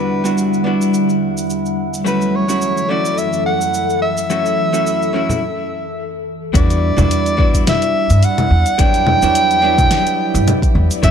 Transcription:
Already playing: ambient pad E2 D3 G3 F#5, hollow-body jazz guitar G3 B3 D4 E4 F#4, soprano saxophone B4
0.24 hollow-body jazz guitar G3 B3 D4 E4 F#4, cabasa
0.38 cabasa
0.54 cabasa
0.64 hollow-body jazz guitar G3 B3 D4 E4 F#4
0.82 cabasa
0.94 cabasa
1.09 cabasa
1.38 cabasa
1.50 cabasa
1.66 cabasa
1.94 cabasa
2.04 ambient pad F#2 E3 A4, hollow-body jazz guitar F#3 A3 C#4 E4 F#4, soprano saxophone B4, cabasa
2.22 cabasa
2.36 soprano saxophone C#5
2.48 hollow-body jazz guitar F#3 A3 C#4 E4 F#4, cabasa
2.62 cabasa
2.77 cabasa
2.89 hollow-body jazz guitar F#3 A3 C#4 E4 F#4, soprano saxophone D5
3.05 cabasa
3.18 soprano saxophone E5, cabasa
3.33 cabasa
3.46 soprano saxophone F#5
3.61 cabasa
3.74 cabasa
3.90 cabasa
4.02 soprano saxophone E5
4.17 cabasa
4.30 hollow-body jazz guitar F#3 A3 C#4 E4 F#4, cabasa
4.46 cabasa
4.72 hollow-body jazz guitar F#3 A3 C#4 E4 F#4, cabasa
4.87 cabasa
5.02 cabasa
5.13 hollow-body jazz guitar F#3 A3 C#4 E4 F#4
5.29 low conga, cabasa
6.54 upright bass E2, hollow-body jazz guitar G3 B3 D4 E4 F#4, ambient pad E4 D5, soprano saxophone D5, kick, closed hi-hat, cabasa
6.70 closed hi-hat, cabasa
6.97 upright bass E2, hollow-body jazz guitar G3 B3 D4 E4 F#4, low conga, cabasa
7.11 closed hi-hat, cabasa
7.26 closed hi-hat, cabasa
7.37 hollow-body jazz guitar G3 B3 D4 E4 F#4, kick
7.54 kick, closed hi-hat, cabasa
7.67 soprano saxophone E5, snare, closed hi-hat, low conga, cabasa
7.82 closed hi-hat, cabasa
8.10 upright bass G2, closed hi-hat, cabasa
8.23 soprano saxophone F#5, closed hi-hat, cabasa
8.38 closed hi-hat, low conga, cabasa
8.50 upright bass E2
8.66 closed hi-hat, cabasa
8.78 upright bass E2, hollow-body jazz guitar F#3 G3 B3 D4 E4, soprano saxophone G5, kick, closed hi-hat, cabasa
8.94 closed hi-hat, cabasa
9.07 low conga
9.22 upright bass E2, hollow-body jazz guitar F#3 G3 B3 D4 E4, cabasa
9.35 closed hi-hat, cabasa
9.51 closed hi-hat, cabasa
9.62 hollow-body jazz guitar F#3 G3 B3 D4 E4
9.78 kick, closed hi-hat, low conga, cabasa
9.91 snare, closed hi-hat, cabasa
10.07 closed hi-hat, cabasa
10.34 upright bass G2, closed hi-hat, cabasa
10.48 closed hi-hat, low conga, cabasa
10.62 kick, closed hi-hat, cabasa
10.75 upright bass E2
10.91 closed hi-hat, cabasa
11.03 upright bass F#2, hollow-body jazz guitar F#3 A3 C#4 E4 F#4, ambient pad E5 A5, soprano saxophone E5, kick, closed hi-hat, cabasa

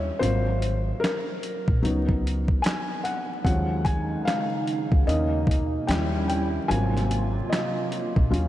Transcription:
Already playing: felt piano G3 C#4 E4 C#5 E5
0.19 upright bass G#1, felt piano F#3 A#3 C4 F4 C5, closed hi-hat
0.62 closed hi-hat
1.00 felt piano A#4
1.04 snare, clap, closed hi-hat
1.43 closed hi-hat
1.68 upright bass A#1, kick
1.82 upright bass C#2, felt piano F#3 B3 D#4, closed hi-hat
2.09 kick
2.27 closed hi-hat
2.48 kick
2.62 felt piano G#5, snare, closed hi-hat
2.67 clap
3.04 felt piano F#5, closed hi-hat
3.44 upright bass D#2, analog synth pad C#3 D#3 G#3 D#4, felt piano F3 F#3 G#3 C#4 F#5, kick, closed hi-hat
3.85 felt piano G#5, kick, closed hi-hat
4.25 felt piano F5, snare, clap, closed hi-hat
4.68 closed hi-hat
4.92 upright bass C#2, kick
5.07 upright bass D#2, analog synth pad B2 A#3 D#4, felt piano A#3 C#4 D#4 D#5, closed hi-hat
5.47 kick
5.51 closed hi-hat
5.86 upright bass D#2, analog synth pad D#3 G3 C#4 E4, felt piano G3 C#4 E4 G5, closed hi-hat
5.91 snare, clap
6.28 felt piano G5, closed hi-hat
6.68 upright bass G#1, analog synth pad C3 F#3 A#3 F4, felt piano F#3 A#3 C4 F4 G#5, closed hi-hat
6.97 snare, closed hi-hat
7.11 closed hi-hat
7.49 felt piano D#5, snare, closed hi-hat
7.54 clap
7.92 closed hi-hat
8.16 upright bass A#1, kick
8.30 upright bass D#2, analog synth pad C#3 D#4, felt piano F#3 C#4 F4, closed hi-hat

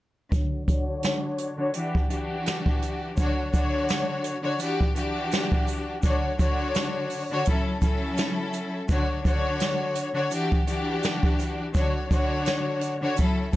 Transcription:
0.31 string section D3 D4 F#4 C#5, kick, closed hi-hat
0.67 string section D3 D4 F#4 C#5, kick, closed hi-hat
1.03 snare, closed hi-hat
1.38 closed hi-hat
1.57 string section D3 D4 F#4 C#5
1.73 string section E3 D4 F#4 G4, closed hi-hat
1.95 kick
2.10 string section E3 D4 F#4 G4, closed hi-hat
2.46 snare, closed hi-hat
2.66 kick
2.82 closed hi-hat
3.17 string section D3 D4 F#4 C#5, kick, closed hi-hat, shaker
3.51 string section D3 D4 F#4 C#5, kick, closed hi-hat, shaker
3.89 snare, closed hi-hat, shaker
4.24 closed hi-hat, shaker
4.42 string section D3 D4 F#4 C#5
4.59 string section E3 D4 F#4 G4, closed hi-hat, shaker
4.81 kick
4.94 string section E3 D4 F#4 G4, closed hi-hat, shaker
5.32 snare, closed hi-hat, shaker
5.52 kick
5.67 closed hi-hat, shaker
6.02 string section D3 D4 F#4 C#5, kick, closed hi-hat, shaker
6.38 string section D3 D4 F#4 C#5, kick, closed hi-hat, shaker
6.74 snare, closed hi-hat, shaker
7.10 open hi-hat, shaker
7.31 string section D3 D4 F#4 C#5
7.45 string section F#3 C#4 E4 A4, kick, closed hi-hat, shaker
7.81 string section F#3 C#4 E4 A4, kick, closed hi-hat, shaker
8.17 snare, closed hi-hat, shaker
8.53 closed hi-hat, shaker
8.89 string section D3 D4 F#4 C#5, kick, closed hi-hat, shaker
9.23 string section D3 D4 F#4 C#5, kick, closed hi-hat, shaker
9.60 snare, closed hi-hat, shaker
9.95 closed hi-hat, shaker
10.14 string section D3 D4 F#4 C#5
10.31 string section E3 D4 F#4 G4, closed hi-hat, shaker
10.52 kick
10.66 string section E3 D4 F#4 G4, closed hi-hat, shaker
11.03 snare, closed hi-hat, shaker
11.23 kick
11.39 closed hi-hat, shaker
11.73 string section D3 D4 F#4 C#5, kick, closed hi-hat, shaker
12.09 string section D3 D4 F#4 C#5, kick, closed hi-hat, shaker
12.46 snare, closed hi-hat, shaker
12.81 closed hi-hat, shaker
13.01 string section D3 D4 F#4 C#5
13.17 string section F#3 C#4 E4 A4, kick, closed hi-hat, shaker
13.52 string section F#3 C#4, closed hi-hat

